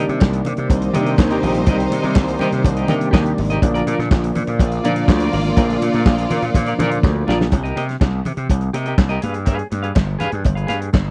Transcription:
Already playing: C3 D#3 G3 A#3 D4 G4 D5
0.09 C3, closed hi-hat
0.20 C2, muted clean electric guitar stroke, kick, snare, clap, cowbell, high conga
0.33 muted clean electric guitar stroke, closed hi-hat
0.45 C3, closed hi-hat, low conga
0.57 C3, muted clean electric guitar stroke, closed hi-hat
0.69 C2 G3 D#4 C5, muted clean electric guitar stroke, kick, closed hi-hat, cowbell
0.81 muted clean electric guitar stroke, closed hi-hat
0.93 C3 D#3 G3 A#3 C4 G4 A#4 D#5, closed hi-hat, muted conga
1.01 D4
1.05 G4 A#4 D#5, closed hi-hat
1.18 D#2, kick, snare, clap, cowbell, high conga
1.30 G4 A#4 D#5, closed hi-hat
1.42 A#1 G4 A#4 D#5, open hi-hat, high conga
1.54 muted clean electric guitar stroke, closed hi-hat
1.66 C2 D#3 G3 A#3 C4 G4 A#4 D#5, kick, closed hi-hat, cowbell, muted conga
1.78 muted clean electric guitar stroke, closed hi-hat
1.90 C3, muted clean electric guitar stroke, closed hi-hat, muted conga
2.02 C3 G4 A#4 D#5, closed hi-hat
2.15 C2, muted clean electric guitar stroke, kick, snare, clap, cowbell, high conga
2.27 muted clean electric guitar stroke, closed hi-hat
2.39 C3 G4 A#4 D#5, closed hi-hat, low conga
2.52 C3, muted clean electric guitar stroke, closed hi-hat
2.64 C2, muted clean electric guitar stroke, kick, closed hi-hat, cowbell, low conga
2.77 G4 A#4 D#5, closed hi-hat
2.88 C3 D#3 G3 A#3 D4 G4 A#4 D#5, closed hi-hat, muted conga, low conga
3.00 muted clean electric guitar stroke, closed hi-hat
3.11 D#2 G4 A#4 D#5, kick, snare, clap, cowbell, high conga
3.25 muted clean electric guitar stroke, closed hi-hat
3.37 G#1, muted clean electric guitar stroke, open hi-hat, high conga
3.50 G4 A#4 D#5, closed hi-hat
3.62 A#1 D3 F3 A#3 D4, kick, closed hi-hat, cowbell, muted conga
3.74 F4 A#4 D5, closed hi-hat
3.86 A#2 F4 A#4 D5, closed hi-hat, muted conga
3.99 A#2, muted clean electric guitar stroke, snare, closed hi-hat
4.11 A#1, kick, snare, clap, cowbell, high conga
4.24 muted clean electric guitar stroke, closed hi-hat
4.35 A#2, closed hi-hat, low conga
4.47 A#2, muted clean electric guitar stroke, closed hi-hat
4.59 A#1 A#3 F4 D5, muted clean electric guitar stroke, kick, closed hi-hat, cowbell
4.72 muted clean electric guitar stroke, closed hi-hat
4.84 A#2 D3 F3 A#3 D4 F4 A#4 D5, closed hi-hat, muted conga
4.95 F4 A#4 D5, closed hi-hat
5.07 D2, muted clean electric guitar stroke, kick, snare, clap, cowbell, high conga
5.18 F4 A#4 D5, closed hi-hat
5.32 G#1 F4 A#4 D5, open hi-hat, high conga
5.44 muted clean electric guitar stroke, closed hi-hat
5.56 A#1 D3 F3 A#3 D4 F4 A#4 D5, kick, closed hi-hat, cowbell, muted conga
5.68 muted clean electric guitar stroke, closed hi-hat
5.80 A#2, muted clean electric guitar stroke, closed hi-hat, muted conga
5.92 A#2 F4 A#4 D5, snare, closed hi-hat
6.06 A#1, kick, snare, clap, cowbell, high conga
6.17 muted clean electric guitar stroke, closed hi-hat
6.29 A#2 F4 A#4 D5, closed hi-hat, low conga
6.42 A#2, muted clean electric guitar stroke, closed hi-hat
6.54 A#2, muted clean electric guitar stroke, kick, closed hi-hat, cowbell, low conga
6.66 F4 A#4 D5, closed hi-hat
6.78 A#2 D3 F3 A#3 F4 A#4 D5, closed hi-hat, muted conga, low conga
6.91 muted clean electric guitar stroke, closed hi-hat
7.03 D2, muted clean electric guitar stroke, kick, snare, cowbell, high conga
7.16 muted clean electric guitar stroke
7.27 A#1 F4 A#4 D5, snare, high conga
7.39 muted clean electric guitar stroke, snare
7.52 C2, muted clean electric guitar stroke, kick, closed hi-hat, cowbell, muted conga
7.63 G4 A#4 D#5, closed hi-hat
7.75 C3 G4 A#4 D#5, closed hi-hat, muted conga
7.89 snare, closed hi-hat
8.00 C2, muted clean electric guitar stroke, kick, snare, clap, cowbell, high conga
8.13 muted clean electric guitar stroke
8.25 C3, closed hi-hat, low conga
8.37 C3, muted clean electric guitar stroke, closed hi-hat
8.49 C2, muted clean electric guitar stroke, kick, closed hi-hat, cowbell
8.61 muted clean electric guitar stroke, closed hi-hat
8.73 C3 G4 A#4 D#5, closed hi-hat, muted conga
8.86 G4 A#4 D#5, closed hi-hat
8.98 C2, kick, snare, clap, cowbell, high conga
9.09 G4 A#4 D#5, closed hi-hat
9.22 G2 G#4 B4 F5, closed hi-hat, high conga
9.34 muted clean electric guitar stroke, closed hi-hat
9.45 G#4 B4 F5, kick, closed hi-hat, cowbell, muted conga
9.58 muted clean electric guitar stroke, closed hi-hat
9.71 G2, muted clean electric guitar stroke, closed hi-hat, muted conga
9.83 G#4 B4 F5, closed hi-hat
9.95 G1, muted clean electric guitar stroke, kick, snare, clap, cowbell, high conga
10.07 muted clean electric guitar stroke
10.19 G2 G#4 B4 F5, closed hi-hat, low conga
10.32 G2, muted clean electric guitar stroke, closed hi-hat
10.44 G1, muted clean electric guitar stroke, kick, closed hi-hat, cowbell, low conga
10.55 G#4 B4 F5, closed hi-hat
10.67 G2 G#4 B4 F5, closed hi-hat, muted conga
10.81 muted clean electric guitar stroke, closed hi-hat
10.93 G1, muted clean electric guitar stroke, kick, snare, clap, cowbell, high conga
11.06 muted clean electric guitar stroke

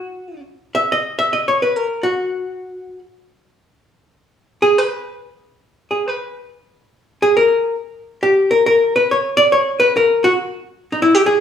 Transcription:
Already playing: F#4
0.75 E5
0.92 D#5
1.19 E5
1.33 D#5
1.48 C#5
1.62 B4
1.76 A#4
2.03 F#4
4.62 G#4
4.78 B4
5.91 G#4
6.08 B4
7.22 G#4
7.37 A#4
8.23 G4
8.51 A#4
8.66 A#4
8.96 B4
9.11 C#5
9.37 D5
9.52 C#5
9.80 B4
9.97 A#4
10.24 F#4
10.92 D#4
11.02 E4
11.15 G4
11.26 G#4

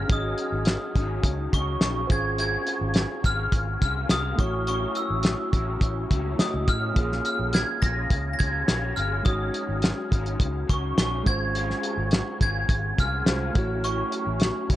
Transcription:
Already playing: G#3 C#4
0.08 G#1 G#2 C#3 F#3 C#4 F#4 G#4, kick, closed hi-hat
0.12 D#4 D#5 D#6
0.38 closed hi-hat
0.52 G#1
0.65 snare, closed hi-hat
0.95 G#1 C#3 F#3 C#4, kick, closed hi-hat
0.99 D#4
1.23 C#2, kick, closed hi-hat
1.52 C#2 C#3 F#3 C#4 C#6, kick, closed hi-hat
1.56 D#4
1.80 A#1 C#3 F#3 C#4 D#4 C#6, snare, closed hi-hat
2.07 G#1 C#3 G#3 F4 G#4 C5, kick, closed hi-hat
2.12 C4 C#4 F4 G#6
2.38 G#2 C#3 G#3 C4 F4 G#6, closed hi-hat
2.67 closed hi-hat
2.81 G#1
2.94 snare, closed hi-hat
3.23 G#1 C#3 G#3 C4 F4 F6, kick, closed hi-hat
3.52 G#1, kick, closed hi-hat
3.80 C2 C#3 G#3 C4 F4 F6, kick, closed hi-hat
4.09 C2 C#3 G#3 C4 D#6, snare, closed hi-hat
4.13 F4
4.36 A1 A2 F#3 A3 E4 F#4, kick, closed hi-hat
4.40 C#4 E4 C#5 C#6
4.67 A2 F#3 C#4 E4 C#6, closed hi-hat
4.95 E6, closed hi-hat
5.10 A1
5.23 snare, closed hi-hat
5.52 A1 A2 F#3 C#4 E4, kick, closed hi-hat
5.81 A1, kick, closed hi-hat
6.09 C#2 A2 F#3 C#4 E4, kick, closed hi-hat
6.38 A2 F#3 A3 C#4 E4 F#4 D#5 D#6, snare, closed hi-hat
6.54 C#2
6.66 A2 F#3 C#4 F6, kick, closed hi-hat
6.70 E4
6.93 A#1 A#2 F3 G#3 A#3 F4 G#4, kick, closed hi-hat
6.98 C#4 F4 C#5
7.12 snare
7.25 F6, closed hi-hat
7.39 A#1
7.53 G#6, snare, closed hi-hat
7.81 A#1 F3 G#3 C#4 F4 A#6, kick, closed hi-hat
8.10 C#2, kick, closed hi-hat
8.33 A#6
8.39 C#2 F3 G#3 C#4 G#6, kick, closed hi-hat
8.43 F4
8.67 A#1 F3 G#3 C#4, snare, closed hi-hat
8.71 F4
8.96 G1 F3 G#3 C#4 F4 F6, closed hi-hat
9.23 G#1 G#2 C#3 F#3 G#3 D#4 F#4 D#6, kick, closed hi-hat
9.27 C#4 D#4 C#5
9.54 closed hi-hat
9.69 G#1
9.82 snare, closed hi-hat
10.11 G#1 C#3 F#3 C#4 D#4, kick, closed hi-hat
10.26 closed hi-hat
10.40 C#2, kick, closed hi-hat
10.67 C#2 C#3 F#3 C#4 C#6, kick, closed hi-hat
10.71 D#4
10.97 A#1 C#3 F#3 C#4 D#4 C#6, snare, closed hi-hat
11.24 G#1 C#3 G#3 C4 C#4 F4 G#6, kick, closed hi-hat
11.29 F4 C5
11.54 G#2 C#3 G#3 C4 F4, closed hi-hat
11.70 snare
11.83 closed hi-hat
11.97 G#1
12.11 snare, closed hi-hat
12.40 G#1 C#3 G#3 C4 F4 G#6, kick, closed hi-hat
12.69 G#1, kick, closed hi-hat
12.97 C2 C#3 G#3 C4 F4 F6, kick, closed hi-hat
13.25 C2 C#3 G#3 C4 C#4 F4 C5, snare, closed hi-hat
13.29 F4
13.53 A1 A2 F#3 A3 C#4 E4 F#4, kick, closed hi-hat
13.58 E4 C#5
13.83 A2 F#3 C#4 E4 C#6, closed hi-hat
14.12 closed hi-hat
14.27 A1
14.40 snare, closed hi-hat
14.69 A1 A2 F#3 C#4 E4, kick, closed hi-hat

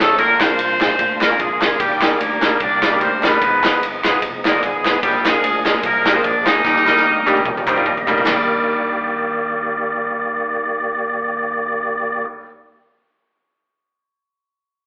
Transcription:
Already playing: F3 A3 C#4 D#4 G#4
0.00 A1 G#3 A3 C#4 D#4 F4 A4, kick, snare, ride
0.18 A#1 A#2 A#3 D4 F4 A#4, kick, ride
0.40 C4 D4 F4 A#4 C5, snare, clap, ride
0.59 C2, ride
0.80 D4 F4 G#4, kick, snare, clap, ride
0.99 D2, kick, ride
1.21 A#3 D4 F4 A#4, snare, clap, ride
1.30 D4 F4 G#4
1.39 F2 G#3 D4 F4 G#4, kick, ride
1.61 D4 F4 A#4, kick, snare, clap, ride
1.79 D#2 D#3 G3 A#3 D4 G4, kick, ride
2.01 G3 G#3 A#3 D4 D#4 G#4 A#4, snare, clap, ride
2.20 D2 A#3 D4 G4 A#4, ride
2.42 G3 A#3 D4 D#4 A#4, kick, snare, clap, ride
2.60 C2 D4 G4 A#4 D5, kick, ride
2.82 G3 A#3 D4 D#4 F4, snare, clap, ride
2.92 G3 A#3 D4 D#4 G4
3.01 D2 C4 C5, kick, ride
3.23 G3 A#3 B3 D4 D#4 F4 A#4 B4, kick, snare, clap, ride
3.41 G#1 G#2 F3 G#3 A#3 D#4 G#4, kick, ride
3.47 B3
3.63 G#3 B3 D#4 F4 B4, snare, clap, ride
3.81 G1, ride
4.04 G#3 B3 D#4 F4 B4, kick, snare, clap, ride
4.22 F1, kick, ride
4.45 G#3 A#3 B3 D#4 F4 A#4 D5, snare, clap, ride
4.54 G#3 B3 D#4 F4 D5
4.62 G#1 G#3 B3 F4 G#4, kick, ride
4.85 G#3 B3 D#4 F4 B4, kick, snare, clap, ride
5.03 A#1 A#2 F3 G3 G#3 A#3 D4 G4 G#4, kick, ride
5.25 G#3 A#3 D4 F4 G#4 A#4, snare, clap, ride
5.43 D2, ride
5.65 G#3 A#3 D4 F4 G#4 A#4, kick, snare, clap, ride
5.83 C2 A#3 D4 F4 A#4, kick, ride
6.05 G#3 A#3 D4 F4 G4, snare, clap, ride
6.14 G#3 A#3 C4 D4 F4 A#4 C5
6.24 A#1 D4 D5, kick, ride
6.45 D2 G#3 A#3 D4 D#4 F4 G4 G#4 A#4 D#5, kick, snare, clap, ride
6.64 D#2 D#3 G3 A#3 D#4 G4, kick, snare
6.76 snare
6.85 G3 A#3 D4 D#4 A#4, snare, clap
6.96 snare
7.05 D2, high tom
7.17 high tom
7.26 G3 A#3 D4 D#4 G4, clap, high tom
7.37 mid tom
7.45 F2, kick, mid tom
7.57 mid tom
7.67 G3 A#3 D4 D#4 C5 G5, clap, mid tom
7.76 G3 A#3 D4 D#4 F4, mid tom
7.86 D#2 D#5, kick, mid tom
7.97 floor tom
8.07 D2 G3 A#3 D4 D#4 A#4, clap, floor tom
8.18 floor tom
8.23 D#2 D#3 G3 A#3 D4 G4 D5, snare, clap, floor tom, ride bell
8.28 D#4 A#4

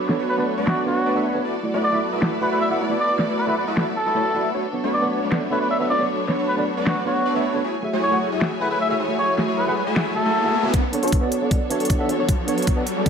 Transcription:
Already playing: F#3 A3 B3 D4 F#4 A4 B4 C#5
0.08 B3 D4 A4 C#5, snare
0.19 A3 D4 F#4 B4 C#5
0.29 B4
0.37 B3 D4 A4 B4 D5
0.58 A3 D4 F#4 B4 D5
0.66 B3 D4 F#4 A4 D5, finger snap, snare
0.86 A3 B3 D4 F#4 A4 B4 C#5
1.06 A3 D4 F#4 B4 D5
1.15 A3 B3 D4 F#4 A4 B4 C#5 E5
1.34 B3 D4 A4 C#5
1.45 F#3 A3 E4 F#4 B4 D5
1.63 A3 E4 F#4 D5
1.74 A3 E4 F#4 B4 D5
1.83 D5
1.92 A3 E4 F#4 E5
2.12 A3 E4 F#4 B4 E5
2.21 A3 E4 F#4 E5, finger snap, snare
2.41 A3 E4 F#4 B4 D5 F#5
2.51 A3 E4 F#4 B4 E5
2.61 E5
2.70 A3 E4 F#4 B4 D5 E5 F#5
2.80 A3 E4 F#4 B4 D5
2.89 A3 E4 F#4 D5
3.00 D5
3.18 A3 E4 F#4 D5, snare
3.29 A3 E4 F#4 B4 D5
3.38 B4
3.47 A3 E4 F#4 B4 E5
3.58 B4
3.67 A3 E4 F#4 B4 E5
3.76 A3 E4 F#4 E5, finger snap, snare
3.96 A4
4.06 A3 E4 F#4 B4 E5
4.15 A3 E4 F#4 C#5
4.34 A3 E4 F#4 B4 D5 E5
4.54 A3 B3 D4 F#4 B4 C#5
4.73 B3 D4 A4 C#5
4.84 A3 D4 F#4 B4 C#5
4.93 D5
5.02 B3 D4 A4 D5
5.22 A3 D4 F#4 B4 D5
5.31 B3 D4 A4 D5, finger snap, snare
5.50 A3 B3 D4 F#4 A4 B4 C#5 E5
5.61 A3 D4 F#4 B4 D5
5.71 E5
5.79 A3 B3 D4 F#4 A4 B4 C#5 E5
5.90 A3 D4 F#4 B4 C#5 D5
5.99 B3 D4 A4 C#5
6.28 B3 D4 A4 C#5, snare
6.38 A3 D4 F#4 B4 C#5
6.48 B4
6.57 B3 D4 A4 B4 D5
6.77 A3 D4 F#4 B4 D5
6.86 B3 D4 F#4 A4 D5, finger snap, snare
7.05 A3 B3 D4 F#4 A4 B4 C#5
7.25 A3 D4 F#4 B4 D5
7.34 A3 B3 D4 F#4 A4 B4 C#5 E5
7.53 B3 D4 A4 C#5
7.64 A3 E4 F#4 G#4 C#5 G#5, riser
7.82 A3 F#4 G#4 E5
7.93 A3 E4 F#4 G#4 C#5
8.03 C#5
8.11 A3 F#4 G#4 F#5
8.32 A3 E4 F#4 G#4 E5
8.40 A3 F#4 G#4 F#5, finger snap, snare
8.60 A3 E4 F#4 G#4 B4 E5 F#5
8.71 A3 E4 F#4 G#4 B4 E5
8.80 E5
8.89 A3 E4 F#4 G#4 C#5 E5
9.00 A3 E4 F#4 G#4 C#5
9.08 A3 F#4 G#4 E5
9.19 C#5
9.37 A3 F#4 G#4 E5, snare
9.48 A3 E4 F#4 G#4 C#5
9.58 B4
9.66 A3 F#4 G#4 B4 F#5
9.77 B4
9.87 A3 E4 F#4 G#4 E5
9.95 A3 F#4 G#4 F#5, finger snap, snare
10.15 A3 F#4 G#4 A4 E5
10.25 A3 E4 F#4 G#4 E5
10.44 A3 F#4 G#4 E5
10.54 A3 E4 F#4 G#4 E5
10.63 A3 F#4 G#4 E5
10.74 F#3 B3 D4 F#4 A4 C#5, kick, closed hi-hat, riser
10.92 B3 D4 A4 C#5, closed hi-hat
11.03 B3 D4 F#4 A4 C#5, closed hi-hat
11.08 closed hi-hat
11.12 kick, closed hi-hat
11.21 B3 D4 A4 D5
11.32 closed hi-hat
11.42 B3 D4 F#4 A4 D5
11.50 B3 D4 A4 D5, kick, closed hi-hat
11.70 B3 D4 F#4 A4 C#5 E5, closed hi-hat
11.80 B3 D4 F#4 A4 D5, closed hi-hat
11.85 closed hi-hat
11.90 kick, closed hi-hat
11.99 B3 D4 F#4 A4 C#5 E5
12.09 B3 D4 F#4 A4 C#5, closed hi-hat
12.18 B3 D4 A4 C#5
12.29 kick, closed hi-hat
12.47 B3 D4 A4 C#5, closed hi-hat
12.58 B3 D4 F#4 A4 C#5, closed hi-hat
12.62 closed hi-hat
12.67 kick, closed hi-hat
12.76 B3 D4 A4 D5
12.87 closed hi-hat
12.96 B3 D4 F#4 A4 D5
13.05 B3 D4 A4, kick, closed hi-hat

